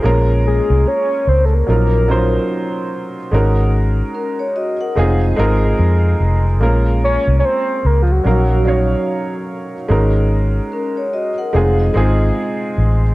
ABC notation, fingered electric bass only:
X:1
M:4/4
L:1/16
Q:"Swing 16ths" 1/4=73
K:Ebdor
V:1 name="Fingered electric bass" clef=bass
B,,,3 C,, z2 D,,2 B,,,4 z4 | A,,,4 z4 F,,,2 A,,,2 F,,2 F,,,2 | B,,,3 C,, z2 D,,2 B,,,4 z4 | A,,,4 z4 F,,,2 A,,,2 z2 =A,,,2 |]